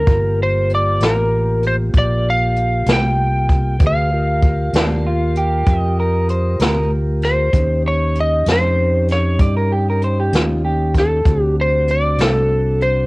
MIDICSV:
0, 0, Header, 1, 6, 480
1, 0, Start_track
1, 0, Key_signature, -2, "minor"
1, 0, Tempo, 621118
1, 55, Time_signature, 12, 3, 24, 8
1, 10097, End_track
2, 0, Start_track
2, 0, Title_t, "Electric slide guitar"
2, 0, Program_c, 0, 29
2, 0, Note_on_c, 0, 70, 74
2, 328, Note_off_c, 0, 70, 0
2, 331, Note_on_c, 0, 72, 81
2, 561, Note_off_c, 0, 72, 0
2, 577, Note_on_c, 0, 74, 78
2, 804, Note_off_c, 0, 74, 0
2, 810, Note_on_c, 0, 70, 81
2, 1289, Note_off_c, 0, 70, 0
2, 1292, Note_on_c, 0, 72, 73
2, 1353, Note_off_c, 0, 72, 0
2, 1533, Note_on_c, 0, 74, 86
2, 1763, Note_off_c, 0, 74, 0
2, 1777, Note_on_c, 0, 77, 93
2, 2253, Note_off_c, 0, 77, 0
2, 2263, Note_on_c, 0, 79, 105
2, 2983, Note_off_c, 0, 79, 0
2, 2988, Note_on_c, 0, 77, 80
2, 4472, Note_off_c, 0, 77, 0
2, 4472, Note_on_c, 0, 75, 80
2, 5334, Note_off_c, 0, 75, 0
2, 5601, Note_on_c, 0, 72, 77
2, 6040, Note_off_c, 0, 72, 0
2, 6087, Note_on_c, 0, 73, 80
2, 6320, Note_off_c, 0, 73, 0
2, 6340, Note_on_c, 0, 75, 93
2, 6545, Note_off_c, 0, 75, 0
2, 6582, Note_on_c, 0, 72, 80
2, 7009, Note_off_c, 0, 72, 0
2, 7050, Note_on_c, 0, 73, 61
2, 7259, Note_off_c, 0, 73, 0
2, 8499, Note_on_c, 0, 69, 75
2, 8824, Note_off_c, 0, 69, 0
2, 8824, Note_on_c, 0, 67, 75
2, 8926, Note_off_c, 0, 67, 0
2, 8974, Note_on_c, 0, 72, 88
2, 9201, Note_off_c, 0, 72, 0
2, 9204, Note_on_c, 0, 74, 97
2, 9433, Note_on_c, 0, 69, 73
2, 9436, Note_off_c, 0, 74, 0
2, 9911, Note_on_c, 0, 72, 75
2, 9917, Note_off_c, 0, 69, 0
2, 10097, Note_off_c, 0, 72, 0
2, 10097, End_track
3, 0, Start_track
3, 0, Title_t, "Clean electric guitar"
3, 0, Program_c, 1, 27
3, 3674, Note_on_c, 1, 62, 84
3, 3900, Note_off_c, 1, 62, 0
3, 3915, Note_on_c, 1, 65, 69
3, 4141, Note_off_c, 1, 65, 0
3, 4153, Note_on_c, 1, 67, 85
3, 4613, Note_off_c, 1, 67, 0
3, 4636, Note_on_c, 1, 70, 78
3, 4861, Note_off_c, 1, 70, 0
3, 4870, Note_on_c, 1, 72, 67
3, 5098, Note_off_c, 1, 72, 0
3, 5110, Note_on_c, 1, 70, 71
3, 5339, Note_off_c, 1, 70, 0
3, 7270, Note_on_c, 1, 74, 72
3, 7381, Note_off_c, 1, 74, 0
3, 7394, Note_on_c, 1, 70, 74
3, 7503, Note_off_c, 1, 70, 0
3, 7513, Note_on_c, 1, 67, 69
3, 7623, Note_off_c, 1, 67, 0
3, 7649, Note_on_c, 1, 70, 62
3, 7751, Note_off_c, 1, 70, 0
3, 7760, Note_on_c, 1, 72, 83
3, 7866, Note_off_c, 1, 72, 0
3, 7881, Note_on_c, 1, 67, 69
3, 7999, Note_off_c, 1, 67, 0
3, 7999, Note_on_c, 1, 65, 77
3, 8221, Note_off_c, 1, 65, 0
3, 8229, Note_on_c, 1, 67, 78
3, 8456, Note_off_c, 1, 67, 0
3, 10097, End_track
4, 0, Start_track
4, 0, Title_t, "Tonewheel organ"
4, 0, Program_c, 2, 16
4, 59, Note_on_c, 2, 65, 64
4, 61, Note_on_c, 2, 58, 63
4, 63, Note_on_c, 2, 67, 58
4, 2914, Note_off_c, 2, 65, 0
4, 2915, Note_off_c, 2, 58, 0
4, 2916, Note_off_c, 2, 67, 0
4, 2929, Note_on_c, 2, 68, 58
4, 2931, Note_on_c, 2, 66, 57
4, 2932, Note_on_c, 2, 71, 61
4, 3175, Note_off_c, 2, 68, 0
4, 3176, Note_off_c, 2, 66, 0
4, 3177, Note_off_c, 2, 71, 0
4, 3189, Note_on_c, 2, 65, 69
4, 3190, Note_on_c, 2, 67, 66
4, 3192, Note_on_c, 2, 70, 69
4, 5798, Note_off_c, 2, 65, 0
4, 5799, Note_off_c, 2, 67, 0
4, 5800, Note_off_c, 2, 70, 0
4, 5813, Note_on_c, 2, 61, 61
4, 5816, Note_on_c, 2, 67, 59
4, 5822, Note_on_c, 2, 63, 54
4, 8664, Note_off_c, 2, 61, 0
4, 8666, Note_off_c, 2, 67, 0
4, 8668, Note_off_c, 2, 63, 0
4, 8693, Note_on_c, 2, 60, 66
4, 8699, Note_on_c, 2, 62, 70
4, 8700, Note_on_c, 2, 66, 70
4, 10097, Note_off_c, 2, 60, 0
4, 10097, Note_off_c, 2, 62, 0
4, 10097, Note_off_c, 2, 66, 0
4, 10097, End_track
5, 0, Start_track
5, 0, Title_t, "Fingered electric bass"
5, 0, Program_c, 3, 33
5, 54, Note_on_c, 3, 31, 68
5, 755, Note_off_c, 3, 31, 0
5, 778, Note_on_c, 3, 33, 86
5, 1477, Note_off_c, 3, 33, 0
5, 1495, Note_on_c, 3, 34, 71
5, 2196, Note_off_c, 3, 34, 0
5, 2213, Note_on_c, 3, 36, 87
5, 2916, Note_off_c, 3, 36, 0
5, 2936, Note_on_c, 3, 38, 76
5, 3637, Note_off_c, 3, 38, 0
5, 3657, Note_on_c, 3, 39, 84
5, 4358, Note_off_c, 3, 39, 0
5, 4379, Note_on_c, 3, 41, 80
5, 5079, Note_off_c, 3, 41, 0
5, 5098, Note_on_c, 3, 38, 70
5, 5797, Note_off_c, 3, 38, 0
5, 5818, Note_on_c, 3, 39, 74
5, 6517, Note_off_c, 3, 39, 0
5, 6541, Note_on_c, 3, 41, 93
5, 7238, Note_off_c, 3, 41, 0
5, 7255, Note_on_c, 3, 43, 67
5, 7954, Note_off_c, 3, 43, 0
5, 7981, Note_on_c, 3, 39, 80
5, 8677, Note_off_c, 3, 39, 0
5, 8696, Note_on_c, 3, 38, 78
5, 9394, Note_off_c, 3, 38, 0
5, 9414, Note_on_c, 3, 36, 89
5, 10097, Note_off_c, 3, 36, 0
5, 10097, End_track
6, 0, Start_track
6, 0, Title_t, "Drums"
6, 53, Note_on_c, 9, 42, 70
6, 55, Note_on_c, 9, 36, 96
6, 130, Note_off_c, 9, 42, 0
6, 132, Note_off_c, 9, 36, 0
6, 537, Note_on_c, 9, 42, 53
6, 614, Note_off_c, 9, 42, 0
6, 775, Note_on_c, 9, 42, 71
6, 793, Note_on_c, 9, 38, 104
6, 852, Note_off_c, 9, 42, 0
6, 870, Note_off_c, 9, 38, 0
6, 1257, Note_on_c, 9, 42, 53
6, 1334, Note_off_c, 9, 42, 0
6, 1494, Note_on_c, 9, 42, 56
6, 1498, Note_on_c, 9, 36, 83
6, 1572, Note_off_c, 9, 42, 0
6, 1575, Note_off_c, 9, 36, 0
6, 1980, Note_on_c, 9, 42, 53
6, 2057, Note_off_c, 9, 42, 0
6, 2213, Note_on_c, 9, 42, 83
6, 2231, Note_on_c, 9, 38, 112
6, 2290, Note_off_c, 9, 42, 0
6, 2309, Note_off_c, 9, 38, 0
6, 2696, Note_on_c, 9, 42, 59
6, 2698, Note_on_c, 9, 36, 73
6, 2774, Note_off_c, 9, 42, 0
6, 2775, Note_off_c, 9, 36, 0
6, 2933, Note_on_c, 9, 42, 70
6, 2937, Note_on_c, 9, 36, 99
6, 3011, Note_off_c, 9, 42, 0
6, 3015, Note_off_c, 9, 36, 0
6, 3416, Note_on_c, 9, 42, 55
6, 3419, Note_on_c, 9, 36, 75
6, 3493, Note_off_c, 9, 42, 0
6, 3496, Note_off_c, 9, 36, 0
6, 3658, Note_on_c, 9, 42, 83
6, 3677, Note_on_c, 9, 38, 111
6, 3735, Note_off_c, 9, 42, 0
6, 3754, Note_off_c, 9, 38, 0
6, 4138, Note_on_c, 9, 42, 54
6, 4215, Note_off_c, 9, 42, 0
6, 4376, Note_on_c, 9, 42, 73
6, 4380, Note_on_c, 9, 36, 87
6, 4454, Note_off_c, 9, 42, 0
6, 4457, Note_off_c, 9, 36, 0
6, 4859, Note_on_c, 9, 42, 55
6, 4936, Note_off_c, 9, 42, 0
6, 5097, Note_on_c, 9, 42, 78
6, 5116, Note_on_c, 9, 38, 114
6, 5175, Note_off_c, 9, 42, 0
6, 5193, Note_off_c, 9, 38, 0
6, 5579, Note_on_c, 9, 42, 51
6, 5598, Note_on_c, 9, 38, 28
6, 5656, Note_off_c, 9, 42, 0
6, 5675, Note_off_c, 9, 38, 0
6, 5820, Note_on_c, 9, 36, 93
6, 5820, Note_on_c, 9, 42, 76
6, 5897, Note_off_c, 9, 42, 0
6, 5898, Note_off_c, 9, 36, 0
6, 6300, Note_on_c, 9, 42, 51
6, 6377, Note_off_c, 9, 42, 0
6, 6538, Note_on_c, 9, 42, 81
6, 6556, Note_on_c, 9, 38, 108
6, 6615, Note_off_c, 9, 42, 0
6, 6634, Note_off_c, 9, 38, 0
6, 7019, Note_on_c, 9, 42, 56
6, 7038, Note_on_c, 9, 38, 28
6, 7096, Note_off_c, 9, 42, 0
6, 7115, Note_off_c, 9, 38, 0
6, 7257, Note_on_c, 9, 42, 77
6, 7259, Note_on_c, 9, 36, 86
6, 7334, Note_off_c, 9, 42, 0
6, 7337, Note_off_c, 9, 36, 0
6, 7742, Note_on_c, 9, 42, 55
6, 7819, Note_off_c, 9, 42, 0
6, 7982, Note_on_c, 9, 42, 86
6, 8001, Note_on_c, 9, 38, 109
6, 8060, Note_off_c, 9, 42, 0
6, 8078, Note_off_c, 9, 38, 0
6, 8459, Note_on_c, 9, 36, 62
6, 8460, Note_on_c, 9, 42, 52
6, 8478, Note_on_c, 9, 38, 29
6, 8536, Note_off_c, 9, 36, 0
6, 8537, Note_off_c, 9, 42, 0
6, 8556, Note_off_c, 9, 38, 0
6, 8698, Note_on_c, 9, 36, 93
6, 8699, Note_on_c, 9, 42, 73
6, 8775, Note_off_c, 9, 36, 0
6, 8776, Note_off_c, 9, 42, 0
6, 9180, Note_on_c, 9, 42, 50
6, 9258, Note_off_c, 9, 42, 0
6, 9415, Note_on_c, 9, 42, 74
6, 9434, Note_on_c, 9, 38, 104
6, 9493, Note_off_c, 9, 42, 0
6, 9511, Note_off_c, 9, 38, 0
6, 9899, Note_on_c, 9, 42, 45
6, 9976, Note_off_c, 9, 42, 0
6, 10097, End_track
0, 0, End_of_file